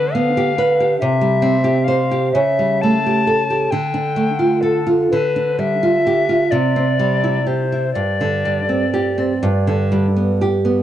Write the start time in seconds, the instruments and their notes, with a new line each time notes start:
Already playing: nylon-string guitar D3 D4, recorder B4
0.14 nylon-string guitar B3, recorder F5
0.37 nylon-string guitar G4
0.58 nylon-string guitar B4
0.80 nylon-string guitar G4
0.99 nylon-string guitar C3, recorder E5
1.21 nylon-string guitar G3
1.42 nylon-string guitar C4
1.64 nylon-string guitar G4
1.84 nylon-string guitar C5, recorder F5
2.11 nylon-string guitar G4
2.32 nylon-string guitar C#3, recorder E5
2.59 nylon-string guitar G3
2.81 nylon-string guitar A3, recorder A5
3.06 nylon-string guitar G4
3.27 nylon-string guitar A4
3.50 nylon-string guitar G4
3.71 nylon-string guitar D3, recorder G5
3.94 nylon-string guitar D4
4.16 nylon-string guitar A3
4.39 nylon-string guitar F4
4.61 recorder A4, nylon-string guitar A4
4.87 nylon-string guitar F4
5.11 nylon-string guitar D3, recorder B4
5.36 nylon-string guitar D4
5.59 nylon-string guitar G3, recorder E5
5.83 nylon-string guitar F4
6.07 nylon-string guitar G4
6.29 nylon-string guitar F4
6.51 nylon-string guitar C3, recorder D5
6.76 nylon-string guitar C4
6.99 nylon-string guitar G3
7.24 nylon-string guitar E4
7.47 nylon-string guitar G4, recorder C5
7.72 nylon-string guitar E4
7.93 nylon-string guitar G2, recorder D5
8.21 nylon-string guitar D3
8.45 nylon-string guitar G3
8.69 nylon-string guitar C4
8.94 nylon-string guitar G4
9.18 nylon-string guitar C4
9.43 nylon-string guitar G2
9.67 nylon-string guitar D3
9.92 nylon-string guitar G3
10.16 nylon-string guitar B3
10.41 nylon-string guitar G4
10.65 nylon-string guitar B3